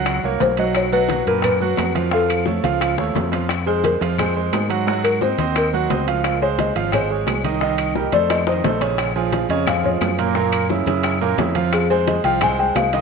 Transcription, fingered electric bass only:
0.00 0.21 C#2 loud
0.23 0.40 C2 medium
0.41 1.21 B1 medium
1.27 1.75 F#2 medium
1.78 2.58 F2 loud
2.64 2.96 C#2 loud
2.98 3.14 D#2 medium
3.15 3.95 F2 loud
4.01 4.49 F2 loud
4.53 5.33 G#2 medium
5.38 5.86 D#2 medium
5.90 6.70 C#2 medium
6.75 7.24 G#1 medium
7.27 8.07 C2 medium
8.12 8.61 F2 medium
8.63 9.44 A#1 medium
9.49 9.98 F2 loud
10.01 10.81 F#2 loud
10.86 11.35 F#2 loud
11.38 12.18 F2 loud
12.24 12.72 C2 medium
12.75 13.01 C2 loud

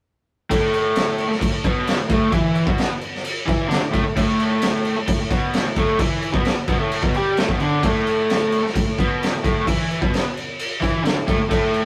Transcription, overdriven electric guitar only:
0.50 1.29 A2 medium
0.50 1.30 A3 loud
1.30 muted overdriven electric guitar stroke medium
1.41 1.50 A2 medium
1.51 1.64 A2 medium
1.65 1.98 B2 medium
1.65 1.99 B3 loud
1.99 2.08 A2 medium
2.09 2.31 A2 medium
2.09 2.32 A3 loud
2.31 2.66 E3 loud
2.31 2.67 E4 loud
2.67 2.90 B2 medium
2.67 2.90 B3 loud
2.90 muted overdriven electric guitar stroke medium
3.46 3.67 E3 medium
3.46 3.69 E4 loud
3.68 3.80 D3 medium
3.68 3.81 D4 loud
3.80 3.90 A2 medium
3.91 4.03 A2 medium
3.91 4.04 A3 loud
4.05 4.15 A2 medium
4.16 4.96 A2 loud
4.16 4.96 A3 loud
4.98 muted overdriven electric guitar stroke medium
5.08 5.18 A2 medium
5.19 5.30 A2 medium
5.30 5.64 B2 loud
5.30 5.65 B3 loud
5.65 5.75 A2 medium
5.76 5.99 A2 medium
5.76 6.00 A3 loud
6.00 6.33 E3 medium
6.00 6.34 E4 loud
6.33 6.56 B2 medium
6.33 6.57 B3 medium
6.57 muted overdriven electric guitar stroke medium
6.68 6.78 B2 loud
6.68 6.79 B3 loud
6.78 7.02 A2 loud
6.78 7.02 A3 loud
7.02 7.13 B2 medium
7.02 7.14 B3 medium
7.15 7.37 G3 medium
7.15 7.38 G4 loud
7.38 7.48 A2 medium
7.38 7.49 A3 loud
7.48 7.60 B2 medium
7.48 7.60 B3 loud
7.60 7.83 D3 medium
7.60 7.83 D4 loud
7.83 8.63 A2 medium
7.83 8.64 A3 loud
8.64 muted overdriven electric guitar stroke medium
8.76 8.85 A2 medium
8.86 8.98 A2 medium
8.99 9.32 B2 medium
8.99 9.33 B3 loud
9.32 9.42 A2 medium
9.43 9.66 A2 medium
9.43 9.67 A3 loud
9.66 10.01 E3 medium
9.66 10.01 E4 loud
10.01 10.23 B2 medium
10.01 10.25 B3 medium
10.24 muted overdriven electric guitar stroke medium
10.80 11.03 E3 medium
10.80 11.04 E4 loud
11.04 11.15 D3 loud
11.04 11.16 D4 loud
11.16 11.27 A2 medium
11.28 11.37 A2 medium
11.28 11.40 A3 loud
11.38 11.48 A2 medium
11.49 11.85 A2 medium
11.49 11.85 A3 loud

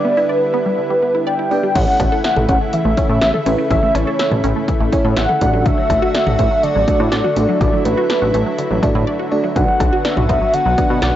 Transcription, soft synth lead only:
0.00 0.29 D5 loud
0.29 1.23 B4 medium
1.27 1.77 G5 loud
1.75 2.75 F#5 loud
2.73 3.70 E5 loud
3.71 3.96 E5 loud
3.95 4.68 C#5 medium
5.17 5.67 F#5 loud
5.65 6.64 E5 loud
6.63 7.60 D5 loud
7.60 7.83 D5 loud
7.85 8.54 B4 medium
9.56 10.06 F#5 loud
10.05 10.55 E5 medium
10.54 11.16 F#5 loud

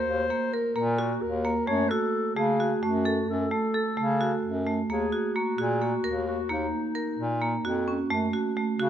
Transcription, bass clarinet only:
0.07 0.26 D#2 medium
0.77 1.13 A#2 medium
1.22 1.58 D#2 medium
1.68 1.86 F#2 medium
2.37 2.73 C#3 medium
2.83 3.19 F#2 medium
3.28 3.46 F#2 medium
3.98 4.34 C#3 medium
4.44 4.80 F#2 medium
4.89 5.07 D#2 medium
5.57 5.94 A#2 medium
6.03 6.40 D#2 medium
6.49 6.67 D#2 medium
7.18 7.55 A#2 medium
7.64 8.00 F2 medium
8.10 8.28 F#2 medium
8.79 8.89 C#3 medium

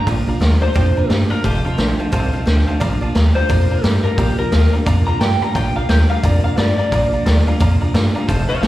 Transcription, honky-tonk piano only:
0.06 0.19 D5 medium
0.06 0.19 F5 medium
0.06 0.20 A#5 loud
0.28 0.36 D5 medium
0.28 0.36 F5 medium
0.28 0.37 A#5 medium
0.41 0.54 D5 medium
0.41 0.54 F5 medium
0.41 0.54 C6 medium
0.61 0.70 D5 medium
0.61 0.70 F5 medium
0.61 0.71 A#5 medium
0.75 0.88 D5 loud
0.75 0.88 F5 medium
0.75 0.89 G5 loud
0.97 1.05 D5 medium
0.97 1.05 F5 medium
0.97 1.05 A#5 medium
1.09 1.22 D5 medium
1.09 1.22 F5 medium
1.09 1.23 A#5 medium
1.30 1.39 D5 medium
1.30 1.39 F5 medium
1.30 1.39 A#5 medium
1.44 1.57 C5 medium
1.44 1.57 F5 medium
1.44 1.57 A5 loud
1.65 1.73 C5 medium
1.65 1.73 F5 medium
1.65 1.73 A5 medium
1.78 1.91 C5 medium
1.78 1.91 F5 medium
1.78 1.91 A5 medium
1.99 2.07 C5 medium
1.99 2.07 F5 medium
1.99 2.08 A5 medium
2.12 2.25 C5 loud
2.12 2.25 F5 loud
2.12 2.25 A5 loud
2.33 2.42 C5 loud
2.33 2.42 F5 medium
2.33 2.42 A5 loud
2.46 2.59 C5 medium
2.46 2.59 F5 medium
2.46 2.59 A5 medium
2.67 2.75 C5 medium
2.67 2.76 F5 medium
2.67 2.76 A5 medium
2.80 2.93 D5 loud
2.80 2.93 F5 loud
2.80 2.94 A#5 loud
3.01 3.10 D5 medium
3.01 3.10 F5 medium
3.01 3.10 A5 loud
3.15 3.28 D5 medium
3.15 3.28 F5 medium
3.15 3.28 A#5 loud
3.35 3.44 D5 medium
3.35 3.44 F5 medium
3.35 3.44 A#5 medium
3.49 3.62 D5 loud
3.49 3.62 F5 loud
3.49 3.62 A#5 loud
3.70 3.79 D5 medium
3.70 3.79 F5 medium
3.70 3.79 A#5 medium
3.84 3.96 D5 medium
3.84 3.96 F5 medium
3.84 3.97 A#5 medium
4.05 4.13 D5 medium
4.05 4.13 F5 medium
4.05 4.13 A#5 medium
4.18 4.30 D5 loud
4.18 4.31 F5 loud
4.18 4.31 A#5 loud
4.38 4.47 D5 medium
4.38 4.47 F5 medium
4.38 4.47 A#5 medium
4.52 4.65 D5 medium
4.52 4.65 F5 medium
4.52 4.65 A5 medium
4.72 4.81 D5 medium
4.72 4.81 F5 medium
4.72 4.81 A#5 medium
4.86 4.99 D5 loud
4.86 4.99 F5 loud
4.86 4.99 A#5 loud
5.07 5.15 D5 medium
5.07 5.16 F5 medium
5.07 5.16 A#5 medium
5.21 5.33 D5 medium
5.21 5.33 F5 medium
5.21 5.34 A#5 medium
5.42 5.50 D5 medium
5.42 5.50 F5 medium
5.42 5.50 A#5 medium
5.55 5.68 D5 loud
5.55 5.68 F5 medium
5.55 5.68 A#5 loud
5.76 5.84 D5 medium
5.76 5.84 F5 medium
5.76 5.84 A#5 medium
5.89 6.02 D5 medium
5.89 6.02 F5 medium
5.89 6.02 A#5 medium
6.10 6.18 D5 medium
6.10 6.19 F5 medium
6.10 6.19 A#5 medium
6.24 6.36 D5 loud
6.24 6.36 F5 medium
6.24 6.37 A#5 loud
6.45 6.53 D5 medium
6.45 6.53 F5 medium
6.45 6.53 A#5 medium
6.58 6.70 D5 medium
6.58 6.70 F5 medium
6.58 6.71 A#5 medium
6.78 6.86 D5 medium
6.78 6.87 F5 medium
6.78 6.87 A#5 medium
6.92 7.04 D5 loud
6.92 7.05 F5 medium
6.92 7.05 A#5 loud
7.13 7.21 D5 medium
7.13 7.21 F5 medium
7.13 7.21 A#5 medium
7.26 7.39 D5 medium
7.26 7.39 F5 medium
7.26 7.39 A#5 medium
7.47 7.55 D5 medium
7.47 7.55 F5 medium
7.47 7.56 A#5 loud
7.60 7.73 D5 loud
7.60 7.73 F5 loud
7.60 7.73 A#5 loud
7.81 7.89 D5 medium
7.81 7.89 F5 medium
7.81 7.90 A#5 loud
7.94 8.07 D5 medium
7.94 8.07 F5 medium
7.94 8.07 A#5 medium
8.15 8.23 D5 loud
8.15 8.23 F5 medium
8.15 8.24 A#5 loud
8.28 8.41 C5 loud
8.28 8.41 F5 loud
8.28 8.41 A5 loud
8.49 8.57 C5 medium
8.49 8.57 F5 medium
8.49 8.58 A5 medium
8.62 8.67 C5 medium
8.62 8.67 F5 medium
8.62 8.67 A5 medium

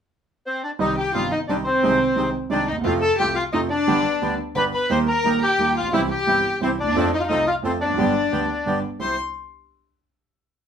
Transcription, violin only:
0.80 0.96 D#4 medium
0.98 1.14 G4 medium
1.15 1.31 F4 medium
1.32 1.40 D#4 medium
1.50 1.57 D4 medium
1.66 2.30 C4 medium
2.51 2.67 D4 medium
2.67 2.75 D#4 medium
2.84 2.92 F4 medium
3.00 3.17 A4 medium
3.18 3.35 G4 medium
3.35 3.43 F4 medium
3.53 3.61 D#4 medium
3.70 4.34 D4 medium
4.55 4.63 B4 medium
4.74 4.89 B4 medium
4.90 4.98 C5 medium
5.07 5.39 A#4 medium
5.43 5.74 G4 medium
5.75 5.92 F4 medium
5.93 6.01 E4 medium
6.10 6.58 G4 medium
6.62 6.70 C4 medium
6.80 7.11 D4 medium
7.14 7.19 D#4 medium
7.19 7.26 F4 medium
7.27 7.45 D#4 medium
7.47 7.55 F4 medium
7.66 7.73 C4 medium
7.81 8.80 D4 medium
9.01 9.16 C6 medium

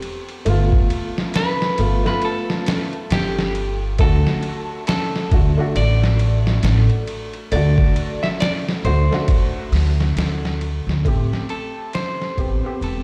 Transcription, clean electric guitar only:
1.36 2.06 B4 medium
2.07 2.24 B4 medium
2.25 3.12 A4 medium
3.12 3.78 G4 medium
4.01 4.87 A4 loud
4.88 5.76 A4 loud
5.77 7.04 D5 medium
7.53 8.22 D5 loud
8.23 8.28 E5 loud
8.41 8.52 D5 loud
8.85 9.69 C5 medium
11.50 11.94 A4 medium
11.95 12.83 C5 loud
12.84 13.03 A4 medium

